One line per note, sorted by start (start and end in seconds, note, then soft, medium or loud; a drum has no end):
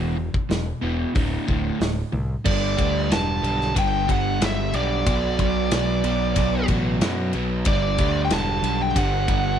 0.00 0.28 E1 medium
0.00 0.16 E2 medium
0.00 0.16 B2 medium
0.00 0.16 E3 medium
0.17 0.47 E2 medium
0.17 0.47 B2 medium
0.34 kick medium
0.50 0.71 E1 medium
0.50 0.79 E2 medium
0.50 0.79 B2 medium
0.50 snare medium
0.50 open hi-hat soft
0.81 1.04 E1 medium
0.81 1.13 E2 medium
0.81 1.13 B2 medium
0.81 1.13 E3 medium
1.15 1.37 D1 medium
1.15 1.46 D2 medium
1.15 1.46 A2 medium
1.15 1.46 D3 medium
1.15 kick loud
1.15 open hi-hat soft
1.47 1.70 D1 medium
1.47 1.78 D2 medium
1.47 1.78 A2 medium
1.47 1.78 D3 medium
1.47 kick medium
1.79 2.02 D1 medium
1.79 2.09 D2 medium
1.79 2.10 A2 medium
1.79 snare medium
1.79 open hi-hat soft
2.12 2.35 C2 medium
2.12 2.42 D2 medium
2.12 2.42 A2 medium
2.45 2.76 G1 medium
2.45 2.76 G2 medium
2.45 2.76 D3 medium
2.45 2.76 G3 loud
2.45 3.13 D5 medium
2.45 kick loud
2.45 crash loud
2.77 3.09 D2 medium
2.77 3.08 G2 medium
2.77 3.09 D3 medium
2.77 3.09 G3 loud
2.77 kick medium
2.77 ride medium
3.10 3.41 E1 medium
3.10 3.41 G2 medium
3.10 3.41 D3 medium
3.10 3.42 G3 medium
3.10 3.73 A5 medium
3.10 snare loud
3.10 ride medium
3.42 3.73 B1 medium
3.42 3.74 G2 medium
3.42 3.74 D3 medium
3.42 3.74 G3 medium
3.42 ride medium
3.61 snare soft
3.75 4.06 G1 medium
3.75 4.06 G2 medium
3.75 4.07 D3 medium
3.75 4.07 G3 medium
3.75 4.11 G5 medium
3.75 kick medium
3.75 ride medium
4.07 4.39 G1 medium
4.07 4.39 G2 medium
4.07 4.40 D3 medium
4.07 4.40 G3 medium
4.07 kick medium
4.07 ride medium
4.11 4.40 F#5 medium
4.40 4.72 G1 medium
4.40 4.72 G2 medium
4.40 4.73 D3 medium
4.40 4.73 G3 medium
4.40 snare loud
4.40 ride medium
4.45 4.75 E5 medium
4.73 5.04 B1 medium
4.73 5.04 G2 medium
4.73 5.05 D3 medium
4.73 5.05 G3 medium
4.73 6.66 D5 medium
4.73 ride medium
5.07 5.37 B1 medium
5.07 5.37 B2 medium
5.07 5.38 F#3 loud
5.07 5.40 B3 medium
5.07 kick loud
5.07 ride medium
5.39 5.69 B1 medium
5.39 5.71 B2 medium
5.39 5.71 F#3 medium
5.39 5.73 B3 medium
5.39 kick medium
5.39 ride medium
5.71 6.02 B1 medium
5.71 6.03 B2 medium
5.71 6.03 F#3 medium
5.71 6.04 B3 medium
5.71 snare loud
5.71 ride medium
6.04 6.34 B1 medium
6.04 6.36 B2 medium
6.04 6.37 F#3 medium
6.04 6.37 B3 medium
6.04 ride medium
6.36 6.67 B1 medium
6.36 6.68 B2 medium
6.36 6.69 F#3 medium
6.36 6.70 B3 medium
6.36 kick medium
6.36 ride loud
6.68 6.99 A1 medium
6.68 7.01 B2 medium
6.68 7.02 F#3 medium
6.68 7.02 B3 medium
6.68 kick medium
6.68 ride medium
7.01 7.32 F#2 medium
7.01 7.33 B2 medium
7.01 7.34 F#3 medium
7.01 7.34 B3 medium
7.01 snare loud
7.01 ride medium
7.33 7.64 B1 medium
7.33 7.65 B2 medium
7.33 7.65 F#3 medium
7.33 7.65 B3 medium
7.33 ride medium
7.65 7.96 G1 medium
7.65 7.98 G2 medium
7.65 7.99 D3 medium
7.65 8.00 G3 loud
7.65 8.21 D5 medium
7.65 kick loud
7.65 ride medium
7.98 8.29 D2 medium
7.98 8.31 G2 medium
7.98 8.31 D3 medium
7.98 8.32 G3 loud
7.98 kick medium
7.98 ride medium
8.25 8.31 G5 medium
8.30 8.61 E1 medium
8.30 8.62 G2 medium
8.30 8.63 D3 medium
8.30 8.64 G3 medium
8.30 8.82 A5 loud
8.30 snare medium
8.30 ride medium
8.63 8.93 B1 medium
8.63 8.94 G2 medium
8.63 8.95 D3 medium
8.63 8.96 G3 medium
8.63 ride medium
8.82 8.98 G5 medium
8.95 9.26 G1 medium
8.95 9.27 G2 medium
8.95 9.28 D3 loud
8.95 9.28 G3 medium
8.95 9.59 F#5 loud
8.95 kick medium
8.95 ride medium
9.28 9.58 G1 medium
9.28 9.59 G2 medium
9.28 9.59 D3 medium
9.28 9.59 G3 loud
9.28 kick medium
9.28 ride medium